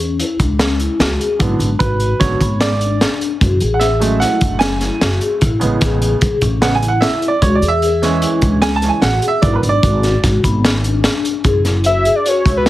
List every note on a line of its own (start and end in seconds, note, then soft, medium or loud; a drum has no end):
0.00 0.20 E2 medium
0.00 0.15 C#4 medium
0.19 0.34 E4 medium
0.19 closed hi-hat medium
0.40 0.86 C#2 medium
0.40 0.54 D4 medium
0.40 kick medium
0.40 closed hi-hat medium
0.59 0.74 C#4 medium
0.59 snare medium
0.59 closed hi-hat medium
0.80 0.95 E4 medium
0.80 closed hi-hat medium
0.99 1.15 C#2 medium
0.99 1.14 F#4 medium
0.99 snare medium
0.99 closed hi-hat medium
1.19 1.34 G#4 medium
1.19 closed hi-hat medium
1.39 1.55 G#1 medium
1.39 1.66 D3 soft
1.39 1.66 F#3 soft
1.39 1.67 B3 medium
1.39 1.55 E4 medium
1.39 kick loud
1.39 closed hi-hat medium
1.59 1.75 G#1 medium
1.59 1.74 D4 medium
1.59 closed hi-hat medium
1.79 2.11 G#1 medium
1.79 2.10 F#4 medium
1.79 2.21 B4 medium
1.79 kick medium
1.79 closed hi-hat medium
2.00 closed hi-hat medium
2.19 2.36 G#1 medium
2.19 2.38 D3 soft
2.19 2.38 F#3 soft
2.19 2.38 B3 soft
2.19 2.57 C#5 medium
2.19 kick medium
2.19 snare soft
2.19 closed hi-hat medium
2.41 3.02 G#1 medium
2.41 2.70 B3 medium
2.41 kick medium
2.41 closed hi-hat medium
2.61 3.17 D5 medium
2.61 snare medium
2.61 closed hi-hat medium
2.80 2.95 D4 medium
2.80 closed hi-hat medium
3.01 3.30 D4 medium
3.01 snare medium
3.01 closed hi-hat medium
3.21 closed hi-hat medium
3.41 3.56 F#1 medium
3.41 3.56 F#4 medium
3.41 kick medium
3.41 closed hi-hat medium
3.60 4.23 A1 medium
3.60 3.76 G#4 medium
3.60 closed hi-hat medium
3.74 3.81 F#5 medium
3.79 3.96 G#4 medium
3.79 4.22 E5 medium
3.79 snare soft
3.79 closed hi-hat medium
4.00 5.37 F#3 medium
4.00 5.37 G#3 soft
4.00 5.38 A3 medium
4.00 4.16 C#4 medium
4.00 closed hi-hat medium
4.20 4.36 E4 medium
4.20 4.62 F#5 medium
4.20 snare soft
4.20 closed hi-hat medium
4.41 4.88 F#1 medium
4.41 4.56 D4 medium
4.41 kick medium
4.41 closed hi-hat medium
4.59 4.77 C#4 medium
4.59 5.16 G#5 medium
4.59 snare medium
4.59 closed hi-hat medium
4.81 4.97 E4 medium
4.81 snare soft
4.81 closed hi-hat medium
5.01 5.17 F#1 medium
5.01 5.17 F#4 medium
5.01 snare medium
5.01 closed hi-hat medium
5.21 5.37 G#4 medium
5.21 closed hi-hat medium
5.41 5.57 A1 medium
5.41 5.57 E4 medium
5.41 kick medium
5.41 closed hi-hat medium
5.60 5.77 A1 medium
5.60 6.18 C#3 medium
5.60 6.18 G#3 soft
5.60 6.19 B3 medium
5.60 5.76 E4 medium
5.60 closed hi-hat medium
5.81 6.13 A1 medium
5.81 6.11 G#4 medium
5.81 kick medium
5.81 snare soft
5.81 closed hi-hat medium
6.02 closed hi-hat medium
6.21 6.37 A1 medium
6.21 6.36 G#4 medium
6.21 kick loud
6.21 closed hi-hat medium
6.41 7.03 A1 medium
6.41 6.72 C#4 medium
6.41 kick medium
6.41 closed hi-hat medium
6.61 6.80 C#3 soft
6.61 6.80 G#3 soft
6.61 6.80 B3 medium
6.61 6.74 F#5 medium
6.61 snare medium
6.61 closed hi-hat medium
6.75 6.89 G#5 medium
6.82 6.97 E4 medium
6.82 closed hi-hat medium
6.88 7.03 F#5 medium
7.01 7.26 E5 medium
7.01 snare loud
7.01 closed hi-hat medium
7.22 closed hi-hat medium
7.28 7.42 D5 medium
7.42 7.57 C#2 loud
7.42 7.57 F#4 medium
7.42 7.56 C#5 medium
7.42 kick medium
7.42 closed hi-hat medium
7.55 7.69 D5 medium
7.62 8.23 E2 medium
7.62 7.77 G#4 medium
7.62 closed hi-hat medium
7.68 8.25 E5 loud
7.82 7.97 G#4 medium
7.82 closed hi-hat medium
8.02 8.60 E3 medium
8.02 8.60 G#3 soft
8.02 8.17 C#4 medium
8.02 8.60 C#4 medium
8.02 snare soft
8.02 closed hi-hat medium
8.22 8.38 E4 medium
8.22 closed hi-hat medium
8.42 8.88 C#2 medium
8.42 8.57 D4 medium
8.42 kick medium
8.42 closed hi-hat medium
8.62 8.77 C#4 medium
8.62 8.76 G#5 loud
8.62 snare loud
8.62 closed hi-hat medium
8.76 8.90 A5 loud
8.82 9.01 E3 soft
8.82 9.02 G#3 soft
8.82 9.02 C#4 medium
8.82 8.98 E4 medium
8.82 snare soft
8.82 closed hi-hat medium
8.89 9.02 G#5 medium
9.02 9.18 A1 medium
9.02 9.17 F#4 medium
9.02 9.27 F#5 loud
9.02 snare loud
9.02 closed hi-hat medium
9.22 9.37 G#4 medium
9.22 closed hi-hat medium
9.28 9.43 E5 medium
9.42 9.58 G#1 medium
9.42 9.70 F#3 soft
9.42 9.70 B3 soft
9.42 9.70 D4 medium
9.42 9.58 E4 medium
9.42 9.53 D5 medium
9.42 kick loud
9.42 closed hi-hat medium
9.53 9.57 A#4 medium
9.53 9.61 B4 medium
9.63 9.78 G#1 medium
9.63 9.78 D4 medium
9.63 closed hi-hat medium
9.69 10.26 D5 loud
9.83 10.14 G#1 medium
9.83 10.13 F#4 medium
9.83 kick medium
9.83 closed hi-hat medium
10.03 snare soft
10.03 closed hi-hat medium
10.23 10.39 G#1 medium
10.23 10.39 F#4 medium
10.23 kick loud
10.23 snare soft
10.23 closed hi-hat medium
10.43 11.05 G#1 medium
10.43 10.73 B3 medium
10.43 kick medium
10.43 closed hi-hat medium
10.65 snare loud
10.65 closed hi-hat medium
10.84 10.99 D4 medium
10.84 closed hi-hat medium
11.04 11.34 D4 medium
11.04 snare medium
11.04 closed hi-hat medium
11.25 closed hi-hat medium
11.44 12.06 F#1 medium
11.44 11.59 G#4 medium
11.44 kick medium
11.44 closed hi-hat medium
11.64 11.79 E4 medium
11.64 snare soft
11.64 closed hi-hat soft
11.84 12.00 F#4 medium
11.84 12.17 E5 loud
11.84 closed hi-hat medium
12.04 12.19 G#4 medium
12.04 closed hi-hat medium
12.15 12.29 D5 medium
12.25 12.39 F#4 medium
12.25 12.56 C#5 loud
12.25 closed hi-hat medium
12.45 12.69 C#2 medium
12.45 12.60 F#4 medium
12.45 kick medium
12.45 closed hi-hat medium
12.57 12.65 B4 medium
12.65 12.69 E4 medium
12.65 snare medium
12.65 closed hi-hat medium